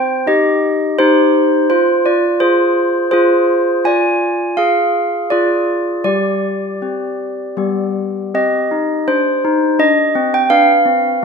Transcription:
0, 0, Header, 1, 2, 480
1, 0, Start_track
1, 0, Key_signature, -3, "minor"
1, 0, Tempo, 710059
1, 1147, Time_signature, 3, 2, 24, 8
1, 2109, Tempo, 729040
1, 3069, Tempo, 751880
1, 5469, Tempo, 724638
1, 7398, End_track
2, 0, Start_track
2, 0, Title_t, "Handbells"
2, 0, Program_c, 0, 14
2, 0, Note_on_c, 0, 60, 63
2, 0, Note_on_c, 0, 72, 78
2, 0, Note_on_c, 0, 79, 100
2, 166, Note_off_c, 0, 72, 0
2, 168, Note_off_c, 0, 79, 0
2, 173, Note_off_c, 0, 60, 0
2, 181, Note_on_c, 0, 63, 46
2, 185, Note_on_c, 0, 75, 82
2, 189, Note_on_c, 0, 67, 65
2, 635, Note_off_c, 0, 63, 0
2, 639, Note_off_c, 0, 67, 0
2, 645, Note_off_c, 0, 75, 0
2, 666, Note_on_c, 0, 72, 100
2, 668, Note_on_c, 0, 67, 57
2, 675, Note_on_c, 0, 63, 71
2, 1121, Note_off_c, 0, 67, 0
2, 1125, Note_off_c, 0, 63, 0
2, 1128, Note_off_c, 0, 72, 0
2, 1148, Note_on_c, 0, 72, 89
2, 1155, Note_on_c, 0, 65, 62
2, 1375, Note_off_c, 0, 65, 0
2, 1378, Note_off_c, 0, 72, 0
2, 1389, Note_on_c, 0, 74, 81
2, 1393, Note_on_c, 0, 65, 63
2, 1614, Note_off_c, 0, 65, 0
2, 1619, Note_off_c, 0, 74, 0
2, 1624, Note_on_c, 0, 72, 85
2, 1627, Note_on_c, 0, 68, 47
2, 1634, Note_on_c, 0, 65, 66
2, 2082, Note_off_c, 0, 68, 0
2, 2085, Note_off_c, 0, 65, 0
2, 2088, Note_off_c, 0, 72, 0
2, 2104, Note_on_c, 0, 72, 91
2, 2108, Note_on_c, 0, 68, 56
2, 2118, Note_on_c, 0, 65, 75
2, 2565, Note_off_c, 0, 68, 0
2, 2570, Note_off_c, 0, 65, 0
2, 2570, Note_off_c, 0, 72, 0
2, 2586, Note_on_c, 0, 65, 62
2, 2591, Note_on_c, 0, 80, 90
2, 2601, Note_on_c, 0, 74, 70
2, 3048, Note_off_c, 0, 74, 0
2, 3050, Note_off_c, 0, 80, 0
2, 3052, Note_off_c, 0, 65, 0
2, 3064, Note_on_c, 0, 65, 43
2, 3064, Note_on_c, 0, 77, 82
2, 3072, Note_on_c, 0, 68, 62
2, 3509, Note_off_c, 0, 65, 0
2, 3512, Note_off_c, 0, 68, 0
2, 3515, Note_off_c, 0, 77, 0
2, 3532, Note_on_c, 0, 74, 83
2, 3538, Note_on_c, 0, 68, 47
2, 3542, Note_on_c, 0, 65, 67
2, 3990, Note_off_c, 0, 68, 0
2, 3992, Note_off_c, 0, 65, 0
2, 3993, Note_off_c, 0, 74, 0
2, 4004, Note_on_c, 0, 55, 54
2, 4005, Note_on_c, 0, 74, 79
2, 4015, Note_on_c, 0, 67, 60
2, 4480, Note_off_c, 0, 55, 0
2, 4495, Note_off_c, 0, 67, 0
2, 4501, Note_on_c, 0, 60, 41
2, 4503, Note_on_c, 0, 67, 39
2, 4959, Note_off_c, 0, 60, 0
2, 4960, Note_off_c, 0, 67, 0
2, 4978, Note_on_c, 0, 55, 57
2, 4982, Note_on_c, 0, 59, 43
2, 4985, Note_on_c, 0, 67, 45
2, 5198, Note_off_c, 0, 74, 0
2, 5443, Note_off_c, 0, 59, 0
2, 5444, Note_off_c, 0, 67, 0
2, 5452, Note_off_c, 0, 55, 0
2, 5473, Note_on_c, 0, 67, 42
2, 5475, Note_on_c, 0, 60, 57
2, 5476, Note_on_c, 0, 75, 85
2, 5668, Note_off_c, 0, 60, 0
2, 5718, Note_on_c, 0, 63, 50
2, 5909, Note_off_c, 0, 63, 0
2, 5939, Note_off_c, 0, 75, 0
2, 5959, Note_on_c, 0, 62, 58
2, 5959, Note_on_c, 0, 72, 84
2, 6150, Note_off_c, 0, 62, 0
2, 6203, Note_on_c, 0, 63, 64
2, 6391, Note_off_c, 0, 63, 0
2, 6418, Note_off_c, 0, 72, 0
2, 6433, Note_on_c, 0, 62, 66
2, 6435, Note_on_c, 0, 75, 96
2, 6624, Note_off_c, 0, 62, 0
2, 6672, Note_on_c, 0, 60, 70
2, 6778, Note_off_c, 0, 75, 0
2, 6796, Note_on_c, 0, 79, 101
2, 6863, Note_off_c, 0, 60, 0
2, 6887, Note_off_c, 0, 67, 0
2, 6902, Note_on_c, 0, 71, 48
2, 6902, Note_on_c, 0, 77, 101
2, 6903, Note_on_c, 0, 62, 69
2, 6913, Note_off_c, 0, 79, 0
2, 7098, Note_off_c, 0, 62, 0
2, 7138, Note_on_c, 0, 60, 63
2, 7334, Note_off_c, 0, 60, 0
2, 7398, Note_off_c, 0, 71, 0
2, 7398, Note_off_c, 0, 77, 0
2, 7398, End_track
0, 0, End_of_file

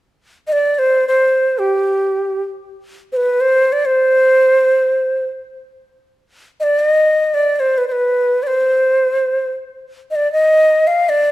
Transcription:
0, 0, Header, 1, 2, 480
1, 0, Start_track
1, 0, Tempo, 500000
1, 10863, End_track
2, 0, Start_track
2, 0, Title_t, "Ney"
2, 0, Program_c, 0, 77
2, 456, Note_on_c, 0, 75, 66
2, 503, Note_on_c, 0, 74, 72
2, 513, Note_off_c, 0, 75, 0
2, 719, Note_off_c, 0, 74, 0
2, 719, Note_on_c, 0, 74, 65
2, 756, Note_on_c, 0, 72, 71
2, 765, Note_off_c, 0, 74, 0
2, 1030, Note_off_c, 0, 72, 0
2, 1036, Note_on_c, 0, 72, 74
2, 1522, Note_on_c, 0, 67, 65
2, 1537, Note_off_c, 0, 72, 0
2, 2337, Note_off_c, 0, 67, 0
2, 2999, Note_on_c, 0, 72, 62
2, 3039, Note_on_c, 0, 71, 67
2, 3049, Note_off_c, 0, 72, 0
2, 3271, Note_on_c, 0, 72, 68
2, 3286, Note_off_c, 0, 71, 0
2, 3575, Note_on_c, 0, 74, 82
2, 3590, Note_off_c, 0, 72, 0
2, 3700, Note_on_c, 0, 72, 83
2, 3714, Note_off_c, 0, 74, 0
2, 5040, Note_off_c, 0, 72, 0
2, 6337, Note_on_c, 0, 75, 71
2, 6368, Note_on_c, 0, 74, 77
2, 6378, Note_off_c, 0, 75, 0
2, 6521, Note_on_c, 0, 75, 77
2, 6536, Note_off_c, 0, 74, 0
2, 7048, Note_on_c, 0, 74, 71
2, 7062, Note_off_c, 0, 75, 0
2, 7257, Note_off_c, 0, 74, 0
2, 7257, Note_on_c, 0, 74, 63
2, 7293, Note_on_c, 0, 72, 69
2, 7303, Note_off_c, 0, 74, 0
2, 7466, Note_on_c, 0, 71, 59
2, 7481, Note_off_c, 0, 72, 0
2, 7557, Note_off_c, 0, 71, 0
2, 7563, Note_on_c, 0, 72, 63
2, 7601, Note_on_c, 0, 71, 69
2, 7611, Note_off_c, 0, 72, 0
2, 8091, Note_on_c, 0, 74, 63
2, 8106, Note_off_c, 0, 71, 0
2, 8132, Note_on_c, 0, 72, 68
2, 8142, Note_off_c, 0, 74, 0
2, 9131, Note_off_c, 0, 72, 0
2, 9703, Note_on_c, 0, 75, 63
2, 9749, Note_on_c, 0, 74, 68
2, 9759, Note_off_c, 0, 75, 0
2, 9899, Note_off_c, 0, 74, 0
2, 9911, Note_on_c, 0, 75, 86
2, 10437, Note_on_c, 0, 77, 71
2, 10451, Note_off_c, 0, 75, 0
2, 10648, Note_on_c, 0, 74, 70
2, 10662, Note_off_c, 0, 77, 0
2, 10863, Note_off_c, 0, 74, 0
2, 10863, End_track
0, 0, End_of_file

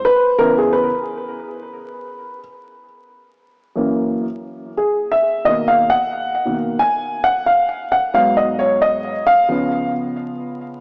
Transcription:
0, 0, Header, 1, 2, 480
1, 0, Start_track
1, 0, Tempo, 674157
1, 42, Time_signature, 4, 2, 24, 8
1, 7693, End_track
2, 0, Start_track
2, 0, Title_t, "Upright piano"
2, 0, Program_c, 0, 0
2, 35, Note_on_c, 0, 71, 105
2, 272, Note_on_c, 0, 49, 55
2, 274, Note_on_c, 0, 70, 102
2, 275, Note_on_c, 0, 52, 59
2, 279, Note_on_c, 0, 59, 69
2, 286, Note_off_c, 0, 71, 0
2, 409, Note_off_c, 0, 70, 0
2, 414, Note_on_c, 0, 68, 83
2, 518, Note_on_c, 0, 71, 87
2, 521, Note_off_c, 0, 68, 0
2, 612, Note_off_c, 0, 49, 0
2, 614, Note_off_c, 0, 52, 0
2, 616, Note_off_c, 0, 59, 0
2, 1691, Note_off_c, 0, 71, 0
2, 2674, Note_on_c, 0, 42, 57
2, 2679, Note_on_c, 0, 52, 48
2, 2685, Note_on_c, 0, 58, 64
2, 3013, Note_off_c, 0, 42, 0
2, 3016, Note_off_c, 0, 52, 0
2, 3019, Note_off_c, 0, 58, 0
2, 3399, Note_on_c, 0, 68, 73
2, 3642, Note_on_c, 0, 76, 83
2, 3648, Note_off_c, 0, 68, 0
2, 3876, Note_on_c, 0, 47, 56
2, 3881, Note_on_c, 0, 51, 54
2, 3882, Note_on_c, 0, 75, 102
2, 3884, Note_on_c, 0, 58, 63
2, 3889, Note_off_c, 0, 76, 0
2, 4031, Note_off_c, 0, 75, 0
2, 4041, Note_on_c, 0, 77, 94
2, 4198, Note_on_c, 0, 78, 98
2, 4207, Note_off_c, 0, 77, 0
2, 4214, Note_off_c, 0, 47, 0
2, 4217, Note_off_c, 0, 51, 0
2, 4218, Note_off_c, 0, 58, 0
2, 4594, Note_on_c, 0, 47, 50
2, 4598, Note_on_c, 0, 51, 44
2, 4601, Note_on_c, 0, 58, 53
2, 4652, Note_off_c, 0, 78, 0
2, 4814, Note_off_c, 0, 47, 0
2, 4816, Note_off_c, 0, 51, 0
2, 4818, Note_off_c, 0, 58, 0
2, 4837, Note_on_c, 0, 80, 95
2, 5137, Note_off_c, 0, 80, 0
2, 5153, Note_on_c, 0, 78, 100
2, 5314, Note_on_c, 0, 77, 91
2, 5323, Note_off_c, 0, 78, 0
2, 5637, Note_on_c, 0, 78, 87
2, 5648, Note_off_c, 0, 77, 0
2, 5788, Note_off_c, 0, 78, 0
2, 5792, Note_on_c, 0, 44, 58
2, 5794, Note_on_c, 0, 54, 55
2, 5799, Note_on_c, 0, 59, 60
2, 5799, Note_on_c, 0, 77, 101
2, 5949, Note_off_c, 0, 77, 0
2, 5958, Note_on_c, 0, 75, 85
2, 6115, Note_on_c, 0, 73, 90
2, 6125, Note_off_c, 0, 75, 0
2, 6277, Note_on_c, 0, 75, 101
2, 6283, Note_off_c, 0, 73, 0
2, 6489, Note_off_c, 0, 44, 0
2, 6490, Note_off_c, 0, 54, 0
2, 6492, Note_off_c, 0, 59, 0
2, 6596, Note_on_c, 0, 77, 108
2, 6609, Note_off_c, 0, 75, 0
2, 6752, Note_on_c, 0, 49, 62
2, 6754, Note_on_c, 0, 53, 52
2, 6759, Note_on_c, 0, 59, 64
2, 7051, Note_off_c, 0, 77, 0
2, 7689, Note_off_c, 0, 49, 0
2, 7690, Note_off_c, 0, 53, 0
2, 7692, Note_off_c, 0, 59, 0
2, 7693, End_track
0, 0, End_of_file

